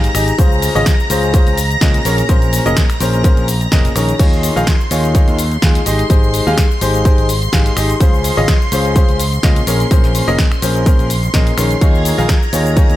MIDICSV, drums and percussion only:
0, 0, Header, 1, 2, 480
1, 0, Start_track
1, 0, Tempo, 476190
1, 388, Time_signature, 4, 2, 24, 8
1, 13067, End_track
2, 0, Start_track
2, 0, Title_t, "Drums"
2, 39, Note_on_c, 9, 42, 55
2, 44, Note_on_c, 9, 82, 25
2, 140, Note_off_c, 9, 42, 0
2, 145, Note_off_c, 9, 82, 0
2, 148, Note_on_c, 9, 26, 84
2, 148, Note_on_c, 9, 46, 101
2, 153, Note_on_c, 9, 82, 81
2, 249, Note_off_c, 9, 26, 0
2, 249, Note_off_c, 9, 46, 0
2, 254, Note_off_c, 9, 82, 0
2, 279, Note_on_c, 9, 42, 55
2, 284, Note_on_c, 9, 82, 36
2, 380, Note_off_c, 9, 42, 0
2, 385, Note_off_c, 9, 82, 0
2, 388, Note_on_c, 9, 36, 114
2, 388, Note_on_c, 9, 42, 85
2, 393, Note_on_c, 9, 82, 48
2, 489, Note_off_c, 9, 36, 0
2, 489, Note_off_c, 9, 42, 0
2, 494, Note_off_c, 9, 82, 0
2, 524, Note_on_c, 9, 82, 23
2, 625, Note_off_c, 9, 82, 0
2, 628, Note_on_c, 9, 46, 97
2, 633, Note_on_c, 9, 82, 85
2, 729, Note_off_c, 9, 46, 0
2, 734, Note_off_c, 9, 82, 0
2, 764, Note_on_c, 9, 82, 36
2, 865, Note_off_c, 9, 82, 0
2, 868, Note_on_c, 9, 26, 79
2, 868, Note_on_c, 9, 36, 99
2, 868, Note_on_c, 9, 38, 116
2, 868, Note_on_c, 9, 42, 85
2, 873, Note_on_c, 9, 82, 49
2, 968, Note_off_c, 9, 38, 0
2, 969, Note_off_c, 9, 26, 0
2, 969, Note_off_c, 9, 36, 0
2, 969, Note_off_c, 9, 42, 0
2, 974, Note_off_c, 9, 82, 0
2, 1004, Note_on_c, 9, 82, 24
2, 1105, Note_off_c, 9, 82, 0
2, 1108, Note_on_c, 9, 46, 99
2, 1113, Note_on_c, 9, 82, 84
2, 1209, Note_off_c, 9, 46, 0
2, 1214, Note_off_c, 9, 82, 0
2, 1239, Note_on_c, 9, 42, 41
2, 1244, Note_on_c, 9, 82, 34
2, 1340, Note_off_c, 9, 42, 0
2, 1344, Note_off_c, 9, 82, 0
2, 1348, Note_on_c, 9, 36, 121
2, 1348, Note_on_c, 9, 42, 86
2, 1353, Note_on_c, 9, 82, 51
2, 1449, Note_off_c, 9, 36, 0
2, 1449, Note_off_c, 9, 42, 0
2, 1454, Note_off_c, 9, 82, 0
2, 1479, Note_on_c, 9, 42, 35
2, 1484, Note_on_c, 9, 82, 22
2, 1580, Note_off_c, 9, 42, 0
2, 1585, Note_off_c, 9, 82, 0
2, 1588, Note_on_c, 9, 46, 105
2, 1593, Note_on_c, 9, 82, 82
2, 1689, Note_off_c, 9, 46, 0
2, 1693, Note_off_c, 9, 82, 0
2, 1719, Note_on_c, 9, 42, 39
2, 1724, Note_on_c, 9, 82, 34
2, 1820, Note_off_c, 9, 42, 0
2, 1825, Note_off_c, 9, 82, 0
2, 1827, Note_on_c, 9, 38, 125
2, 1828, Note_on_c, 9, 36, 105
2, 1828, Note_on_c, 9, 42, 90
2, 1833, Note_on_c, 9, 82, 51
2, 1928, Note_off_c, 9, 38, 0
2, 1929, Note_off_c, 9, 36, 0
2, 1929, Note_off_c, 9, 42, 0
2, 1934, Note_off_c, 9, 82, 0
2, 1959, Note_on_c, 9, 42, 57
2, 1964, Note_on_c, 9, 82, 25
2, 2060, Note_off_c, 9, 42, 0
2, 2065, Note_off_c, 9, 82, 0
2, 2068, Note_on_c, 9, 46, 106
2, 2073, Note_on_c, 9, 82, 85
2, 2169, Note_off_c, 9, 46, 0
2, 2174, Note_off_c, 9, 82, 0
2, 2199, Note_on_c, 9, 42, 56
2, 2204, Note_on_c, 9, 82, 36
2, 2300, Note_off_c, 9, 42, 0
2, 2305, Note_off_c, 9, 82, 0
2, 2308, Note_on_c, 9, 36, 107
2, 2308, Note_on_c, 9, 42, 84
2, 2313, Note_on_c, 9, 82, 45
2, 2409, Note_off_c, 9, 36, 0
2, 2409, Note_off_c, 9, 42, 0
2, 2414, Note_off_c, 9, 82, 0
2, 2439, Note_on_c, 9, 42, 38
2, 2444, Note_on_c, 9, 82, 23
2, 2540, Note_off_c, 9, 42, 0
2, 2545, Note_off_c, 9, 82, 0
2, 2548, Note_on_c, 9, 46, 102
2, 2553, Note_on_c, 9, 82, 76
2, 2649, Note_off_c, 9, 46, 0
2, 2654, Note_off_c, 9, 82, 0
2, 2679, Note_on_c, 9, 42, 38
2, 2684, Note_on_c, 9, 82, 34
2, 2780, Note_off_c, 9, 42, 0
2, 2785, Note_off_c, 9, 82, 0
2, 2788, Note_on_c, 9, 26, 76
2, 2788, Note_on_c, 9, 36, 101
2, 2788, Note_on_c, 9, 38, 126
2, 2788, Note_on_c, 9, 42, 83
2, 2793, Note_on_c, 9, 82, 47
2, 2889, Note_off_c, 9, 26, 0
2, 2889, Note_off_c, 9, 36, 0
2, 2889, Note_off_c, 9, 38, 0
2, 2889, Note_off_c, 9, 42, 0
2, 2894, Note_off_c, 9, 82, 0
2, 2920, Note_on_c, 9, 26, 82
2, 2920, Note_on_c, 9, 42, 41
2, 2924, Note_on_c, 9, 82, 23
2, 3020, Note_off_c, 9, 26, 0
2, 3020, Note_off_c, 9, 42, 0
2, 3025, Note_off_c, 9, 82, 0
2, 3029, Note_on_c, 9, 46, 105
2, 3033, Note_on_c, 9, 82, 83
2, 3129, Note_off_c, 9, 46, 0
2, 3134, Note_off_c, 9, 82, 0
2, 3159, Note_on_c, 9, 42, 38
2, 3164, Note_on_c, 9, 82, 36
2, 3260, Note_off_c, 9, 42, 0
2, 3265, Note_off_c, 9, 82, 0
2, 3268, Note_on_c, 9, 36, 124
2, 3269, Note_on_c, 9, 42, 84
2, 3273, Note_on_c, 9, 82, 50
2, 3369, Note_off_c, 9, 36, 0
2, 3369, Note_off_c, 9, 42, 0
2, 3374, Note_off_c, 9, 82, 0
2, 3399, Note_on_c, 9, 42, 36
2, 3404, Note_on_c, 9, 82, 22
2, 3500, Note_off_c, 9, 42, 0
2, 3505, Note_off_c, 9, 82, 0
2, 3508, Note_on_c, 9, 46, 105
2, 3513, Note_on_c, 9, 82, 82
2, 3609, Note_off_c, 9, 46, 0
2, 3614, Note_off_c, 9, 82, 0
2, 3640, Note_on_c, 9, 42, 38
2, 3644, Note_on_c, 9, 82, 35
2, 3740, Note_off_c, 9, 42, 0
2, 3745, Note_off_c, 9, 82, 0
2, 3748, Note_on_c, 9, 36, 100
2, 3748, Note_on_c, 9, 38, 127
2, 3748, Note_on_c, 9, 42, 91
2, 3753, Note_on_c, 9, 82, 49
2, 3849, Note_off_c, 9, 36, 0
2, 3849, Note_off_c, 9, 38, 0
2, 3849, Note_off_c, 9, 42, 0
2, 3854, Note_off_c, 9, 82, 0
2, 3879, Note_on_c, 9, 42, 56
2, 3884, Note_on_c, 9, 82, 24
2, 3980, Note_off_c, 9, 42, 0
2, 3985, Note_off_c, 9, 82, 0
2, 3988, Note_on_c, 9, 26, 83
2, 3988, Note_on_c, 9, 46, 99
2, 3993, Note_on_c, 9, 82, 81
2, 4089, Note_off_c, 9, 26, 0
2, 4089, Note_off_c, 9, 46, 0
2, 4094, Note_off_c, 9, 82, 0
2, 4119, Note_on_c, 9, 42, 57
2, 4124, Note_on_c, 9, 82, 36
2, 4220, Note_off_c, 9, 42, 0
2, 4225, Note_off_c, 9, 82, 0
2, 4228, Note_on_c, 9, 36, 121
2, 4228, Note_on_c, 9, 42, 84
2, 4228, Note_on_c, 9, 49, 77
2, 4233, Note_on_c, 9, 82, 46
2, 4329, Note_off_c, 9, 36, 0
2, 4329, Note_off_c, 9, 42, 0
2, 4329, Note_off_c, 9, 49, 0
2, 4334, Note_off_c, 9, 82, 0
2, 4364, Note_on_c, 9, 82, 21
2, 4465, Note_off_c, 9, 82, 0
2, 4468, Note_on_c, 9, 46, 106
2, 4473, Note_on_c, 9, 82, 80
2, 4569, Note_off_c, 9, 46, 0
2, 4574, Note_off_c, 9, 82, 0
2, 4604, Note_on_c, 9, 82, 35
2, 4705, Note_off_c, 9, 82, 0
2, 4708, Note_on_c, 9, 26, 79
2, 4708, Note_on_c, 9, 38, 125
2, 4708, Note_on_c, 9, 42, 84
2, 4709, Note_on_c, 9, 36, 101
2, 4713, Note_on_c, 9, 82, 47
2, 4809, Note_off_c, 9, 26, 0
2, 4809, Note_off_c, 9, 36, 0
2, 4809, Note_off_c, 9, 38, 0
2, 4809, Note_off_c, 9, 42, 0
2, 4814, Note_off_c, 9, 82, 0
2, 4844, Note_on_c, 9, 82, 22
2, 4945, Note_off_c, 9, 82, 0
2, 4948, Note_on_c, 9, 46, 112
2, 4953, Note_on_c, 9, 82, 80
2, 5049, Note_off_c, 9, 46, 0
2, 5054, Note_off_c, 9, 82, 0
2, 5079, Note_on_c, 9, 42, 39
2, 5084, Note_on_c, 9, 82, 35
2, 5180, Note_off_c, 9, 42, 0
2, 5185, Note_off_c, 9, 82, 0
2, 5188, Note_on_c, 9, 42, 88
2, 5189, Note_on_c, 9, 36, 126
2, 5193, Note_on_c, 9, 82, 46
2, 5289, Note_off_c, 9, 36, 0
2, 5289, Note_off_c, 9, 42, 0
2, 5294, Note_off_c, 9, 82, 0
2, 5319, Note_on_c, 9, 42, 36
2, 5324, Note_on_c, 9, 82, 21
2, 5420, Note_off_c, 9, 42, 0
2, 5425, Note_off_c, 9, 82, 0
2, 5428, Note_on_c, 9, 46, 110
2, 5433, Note_on_c, 9, 82, 82
2, 5529, Note_off_c, 9, 46, 0
2, 5534, Note_off_c, 9, 82, 0
2, 5559, Note_on_c, 9, 42, 36
2, 5564, Note_on_c, 9, 82, 34
2, 5660, Note_off_c, 9, 42, 0
2, 5665, Note_off_c, 9, 82, 0
2, 5668, Note_on_c, 9, 36, 107
2, 5668, Note_on_c, 9, 38, 127
2, 5668, Note_on_c, 9, 42, 85
2, 5673, Note_on_c, 9, 82, 47
2, 5768, Note_off_c, 9, 38, 0
2, 5769, Note_off_c, 9, 36, 0
2, 5769, Note_off_c, 9, 42, 0
2, 5774, Note_off_c, 9, 82, 0
2, 5799, Note_on_c, 9, 42, 59
2, 5804, Note_on_c, 9, 82, 23
2, 5900, Note_off_c, 9, 42, 0
2, 5905, Note_off_c, 9, 82, 0
2, 5908, Note_on_c, 9, 46, 111
2, 5913, Note_on_c, 9, 82, 80
2, 6009, Note_off_c, 9, 46, 0
2, 6014, Note_off_c, 9, 82, 0
2, 6039, Note_on_c, 9, 42, 55
2, 6044, Note_on_c, 9, 82, 34
2, 6140, Note_off_c, 9, 42, 0
2, 6145, Note_off_c, 9, 82, 0
2, 6148, Note_on_c, 9, 36, 123
2, 6148, Note_on_c, 9, 42, 78
2, 6153, Note_on_c, 9, 82, 45
2, 6249, Note_off_c, 9, 36, 0
2, 6249, Note_off_c, 9, 42, 0
2, 6254, Note_off_c, 9, 82, 0
2, 6284, Note_on_c, 9, 82, 22
2, 6385, Note_off_c, 9, 82, 0
2, 6389, Note_on_c, 9, 46, 104
2, 6393, Note_on_c, 9, 82, 75
2, 6489, Note_off_c, 9, 46, 0
2, 6494, Note_off_c, 9, 82, 0
2, 6524, Note_on_c, 9, 82, 33
2, 6625, Note_off_c, 9, 82, 0
2, 6628, Note_on_c, 9, 36, 107
2, 6628, Note_on_c, 9, 38, 127
2, 6629, Note_on_c, 9, 26, 77
2, 6629, Note_on_c, 9, 42, 83
2, 6633, Note_on_c, 9, 82, 45
2, 6729, Note_off_c, 9, 26, 0
2, 6729, Note_off_c, 9, 36, 0
2, 6729, Note_off_c, 9, 38, 0
2, 6729, Note_off_c, 9, 42, 0
2, 6734, Note_off_c, 9, 82, 0
2, 6764, Note_on_c, 9, 82, 23
2, 6865, Note_off_c, 9, 82, 0
2, 6868, Note_on_c, 9, 46, 112
2, 6873, Note_on_c, 9, 82, 77
2, 6969, Note_off_c, 9, 46, 0
2, 6974, Note_off_c, 9, 82, 0
2, 6999, Note_on_c, 9, 42, 38
2, 7004, Note_on_c, 9, 82, 33
2, 7100, Note_off_c, 9, 42, 0
2, 7105, Note_off_c, 9, 82, 0
2, 7108, Note_on_c, 9, 36, 127
2, 7108, Note_on_c, 9, 42, 85
2, 7113, Note_on_c, 9, 82, 45
2, 7209, Note_off_c, 9, 36, 0
2, 7209, Note_off_c, 9, 42, 0
2, 7214, Note_off_c, 9, 82, 0
2, 7239, Note_on_c, 9, 42, 36
2, 7244, Note_on_c, 9, 82, 20
2, 7340, Note_off_c, 9, 42, 0
2, 7345, Note_off_c, 9, 82, 0
2, 7348, Note_on_c, 9, 46, 113
2, 7353, Note_on_c, 9, 82, 77
2, 7449, Note_off_c, 9, 46, 0
2, 7454, Note_off_c, 9, 82, 0
2, 7479, Note_on_c, 9, 42, 36
2, 7484, Note_on_c, 9, 82, 31
2, 7580, Note_off_c, 9, 42, 0
2, 7585, Note_off_c, 9, 82, 0
2, 7588, Note_on_c, 9, 36, 104
2, 7588, Note_on_c, 9, 38, 127
2, 7589, Note_on_c, 9, 42, 87
2, 7593, Note_on_c, 9, 82, 45
2, 7689, Note_off_c, 9, 36, 0
2, 7689, Note_off_c, 9, 38, 0
2, 7689, Note_off_c, 9, 42, 0
2, 7694, Note_off_c, 9, 82, 0
2, 7719, Note_on_c, 9, 42, 54
2, 7724, Note_on_c, 9, 82, 23
2, 7820, Note_off_c, 9, 42, 0
2, 7825, Note_off_c, 9, 82, 0
2, 7829, Note_on_c, 9, 26, 84
2, 7829, Note_on_c, 9, 46, 113
2, 7833, Note_on_c, 9, 82, 77
2, 7929, Note_off_c, 9, 26, 0
2, 7929, Note_off_c, 9, 46, 0
2, 7934, Note_off_c, 9, 82, 0
2, 7960, Note_on_c, 9, 42, 55
2, 7964, Note_on_c, 9, 82, 32
2, 8060, Note_off_c, 9, 42, 0
2, 8065, Note_off_c, 9, 82, 0
2, 8068, Note_on_c, 9, 36, 118
2, 8069, Note_on_c, 9, 42, 78
2, 8073, Note_on_c, 9, 82, 45
2, 8169, Note_off_c, 9, 36, 0
2, 8169, Note_off_c, 9, 42, 0
2, 8174, Note_off_c, 9, 82, 0
2, 8204, Note_on_c, 9, 82, 21
2, 8305, Note_off_c, 9, 82, 0
2, 8309, Note_on_c, 9, 46, 113
2, 8314, Note_on_c, 9, 82, 73
2, 8410, Note_off_c, 9, 46, 0
2, 8414, Note_off_c, 9, 82, 0
2, 8444, Note_on_c, 9, 82, 32
2, 8545, Note_off_c, 9, 82, 0
2, 8548, Note_on_c, 9, 36, 111
2, 8548, Note_on_c, 9, 38, 124
2, 8549, Note_on_c, 9, 26, 83
2, 8549, Note_on_c, 9, 42, 79
2, 8553, Note_on_c, 9, 82, 43
2, 8649, Note_off_c, 9, 26, 0
2, 8649, Note_off_c, 9, 36, 0
2, 8649, Note_off_c, 9, 38, 0
2, 8649, Note_off_c, 9, 42, 0
2, 8654, Note_off_c, 9, 82, 0
2, 8685, Note_on_c, 9, 82, 21
2, 8785, Note_off_c, 9, 82, 0
2, 8789, Note_on_c, 9, 46, 112
2, 8793, Note_on_c, 9, 82, 74
2, 8889, Note_off_c, 9, 46, 0
2, 8894, Note_off_c, 9, 82, 0
2, 8919, Note_on_c, 9, 42, 37
2, 8924, Note_on_c, 9, 82, 32
2, 9020, Note_off_c, 9, 42, 0
2, 9025, Note_off_c, 9, 82, 0
2, 9029, Note_on_c, 9, 36, 127
2, 9029, Note_on_c, 9, 42, 81
2, 9034, Note_on_c, 9, 82, 45
2, 9129, Note_off_c, 9, 36, 0
2, 9129, Note_off_c, 9, 42, 0
2, 9134, Note_off_c, 9, 82, 0
2, 9160, Note_on_c, 9, 42, 35
2, 9164, Note_on_c, 9, 82, 20
2, 9260, Note_off_c, 9, 42, 0
2, 9265, Note_off_c, 9, 82, 0
2, 9269, Note_on_c, 9, 46, 116
2, 9274, Note_on_c, 9, 82, 78
2, 9369, Note_off_c, 9, 46, 0
2, 9374, Note_off_c, 9, 82, 0
2, 9399, Note_on_c, 9, 42, 35
2, 9404, Note_on_c, 9, 82, 31
2, 9500, Note_off_c, 9, 42, 0
2, 9505, Note_off_c, 9, 82, 0
2, 9508, Note_on_c, 9, 38, 127
2, 9508, Note_on_c, 9, 42, 84
2, 9509, Note_on_c, 9, 36, 109
2, 9513, Note_on_c, 9, 82, 45
2, 9609, Note_off_c, 9, 36, 0
2, 9609, Note_off_c, 9, 38, 0
2, 9609, Note_off_c, 9, 42, 0
2, 9614, Note_off_c, 9, 82, 0
2, 9640, Note_on_c, 9, 42, 55
2, 9644, Note_on_c, 9, 82, 23
2, 9740, Note_off_c, 9, 42, 0
2, 9745, Note_off_c, 9, 82, 0
2, 9749, Note_on_c, 9, 46, 117
2, 9753, Note_on_c, 9, 82, 76
2, 9849, Note_off_c, 9, 46, 0
2, 9854, Note_off_c, 9, 82, 0
2, 9880, Note_on_c, 9, 42, 53
2, 9884, Note_on_c, 9, 82, 34
2, 9980, Note_off_c, 9, 42, 0
2, 9985, Note_off_c, 9, 82, 0
2, 9989, Note_on_c, 9, 36, 125
2, 9989, Note_on_c, 9, 42, 76
2, 9994, Note_on_c, 9, 82, 45
2, 10089, Note_off_c, 9, 36, 0
2, 10089, Note_off_c, 9, 42, 0
2, 10094, Note_off_c, 9, 82, 0
2, 10119, Note_on_c, 9, 38, 37
2, 10120, Note_on_c, 9, 42, 35
2, 10124, Note_on_c, 9, 82, 23
2, 10220, Note_off_c, 9, 38, 0
2, 10220, Note_off_c, 9, 42, 0
2, 10225, Note_off_c, 9, 82, 0
2, 10229, Note_on_c, 9, 46, 112
2, 10234, Note_on_c, 9, 82, 77
2, 10330, Note_off_c, 9, 46, 0
2, 10335, Note_off_c, 9, 82, 0
2, 10364, Note_on_c, 9, 82, 34
2, 10465, Note_off_c, 9, 82, 0
2, 10468, Note_on_c, 9, 38, 123
2, 10469, Note_on_c, 9, 26, 84
2, 10469, Note_on_c, 9, 36, 106
2, 10469, Note_on_c, 9, 42, 81
2, 10473, Note_on_c, 9, 82, 45
2, 10569, Note_off_c, 9, 26, 0
2, 10569, Note_off_c, 9, 36, 0
2, 10569, Note_off_c, 9, 38, 0
2, 10569, Note_off_c, 9, 42, 0
2, 10574, Note_off_c, 9, 82, 0
2, 10600, Note_on_c, 9, 26, 85
2, 10604, Note_on_c, 9, 82, 22
2, 10700, Note_off_c, 9, 26, 0
2, 10705, Note_off_c, 9, 82, 0
2, 10708, Note_on_c, 9, 46, 113
2, 10713, Note_on_c, 9, 82, 82
2, 10809, Note_off_c, 9, 46, 0
2, 10814, Note_off_c, 9, 82, 0
2, 10844, Note_on_c, 9, 82, 33
2, 10945, Note_off_c, 9, 82, 0
2, 10949, Note_on_c, 9, 36, 127
2, 10949, Note_on_c, 9, 42, 78
2, 10954, Note_on_c, 9, 82, 45
2, 11049, Note_off_c, 9, 36, 0
2, 11049, Note_off_c, 9, 42, 0
2, 11054, Note_off_c, 9, 82, 0
2, 11080, Note_on_c, 9, 42, 33
2, 11084, Note_on_c, 9, 82, 21
2, 11180, Note_off_c, 9, 42, 0
2, 11185, Note_off_c, 9, 82, 0
2, 11189, Note_on_c, 9, 46, 114
2, 11194, Note_on_c, 9, 82, 79
2, 11290, Note_off_c, 9, 46, 0
2, 11294, Note_off_c, 9, 82, 0
2, 11319, Note_on_c, 9, 42, 34
2, 11324, Note_on_c, 9, 82, 32
2, 11420, Note_off_c, 9, 42, 0
2, 11425, Note_off_c, 9, 82, 0
2, 11428, Note_on_c, 9, 36, 105
2, 11428, Note_on_c, 9, 38, 125
2, 11429, Note_on_c, 9, 42, 83
2, 11434, Note_on_c, 9, 82, 48
2, 11529, Note_off_c, 9, 36, 0
2, 11529, Note_off_c, 9, 38, 0
2, 11530, Note_off_c, 9, 42, 0
2, 11534, Note_off_c, 9, 82, 0
2, 11560, Note_on_c, 9, 42, 53
2, 11564, Note_on_c, 9, 82, 22
2, 11660, Note_off_c, 9, 42, 0
2, 11665, Note_off_c, 9, 82, 0
2, 11669, Note_on_c, 9, 26, 89
2, 11669, Note_on_c, 9, 46, 112
2, 11673, Note_on_c, 9, 82, 77
2, 11769, Note_off_c, 9, 26, 0
2, 11769, Note_off_c, 9, 46, 0
2, 11774, Note_off_c, 9, 82, 0
2, 11800, Note_on_c, 9, 42, 51
2, 11804, Note_on_c, 9, 82, 33
2, 11900, Note_off_c, 9, 42, 0
2, 11905, Note_off_c, 9, 82, 0
2, 11908, Note_on_c, 9, 36, 120
2, 11909, Note_on_c, 9, 42, 81
2, 11914, Note_on_c, 9, 82, 45
2, 12009, Note_off_c, 9, 36, 0
2, 12010, Note_off_c, 9, 42, 0
2, 12014, Note_off_c, 9, 82, 0
2, 12044, Note_on_c, 9, 82, 24
2, 12145, Note_off_c, 9, 82, 0
2, 12149, Note_on_c, 9, 46, 107
2, 12154, Note_on_c, 9, 82, 79
2, 12250, Note_off_c, 9, 46, 0
2, 12254, Note_off_c, 9, 82, 0
2, 12285, Note_on_c, 9, 82, 33
2, 12385, Note_off_c, 9, 82, 0
2, 12388, Note_on_c, 9, 36, 103
2, 12388, Note_on_c, 9, 38, 113
2, 12389, Note_on_c, 9, 26, 84
2, 12389, Note_on_c, 9, 42, 78
2, 12393, Note_on_c, 9, 82, 48
2, 12489, Note_off_c, 9, 26, 0
2, 12489, Note_off_c, 9, 36, 0
2, 12489, Note_off_c, 9, 38, 0
2, 12489, Note_off_c, 9, 42, 0
2, 12494, Note_off_c, 9, 82, 0
2, 12525, Note_on_c, 9, 82, 23
2, 12625, Note_off_c, 9, 82, 0
2, 12629, Note_on_c, 9, 46, 109
2, 12633, Note_on_c, 9, 82, 83
2, 12729, Note_off_c, 9, 46, 0
2, 12734, Note_off_c, 9, 82, 0
2, 12759, Note_on_c, 9, 42, 36
2, 12764, Note_on_c, 9, 82, 34
2, 12860, Note_off_c, 9, 42, 0
2, 12865, Note_off_c, 9, 82, 0
2, 12868, Note_on_c, 9, 36, 122
2, 12868, Note_on_c, 9, 42, 76
2, 12873, Note_on_c, 9, 82, 46
2, 12969, Note_off_c, 9, 36, 0
2, 12969, Note_off_c, 9, 42, 0
2, 12974, Note_off_c, 9, 82, 0
2, 12999, Note_on_c, 9, 42, 33
2, 13004, Note_on_c, 9, 82, 22
2, 13067, Note_off_c, 9, 42, 0
2, 13067, Note_off_c, 9, 82, 0
2, 13067, End_track
0, 0, End_of_file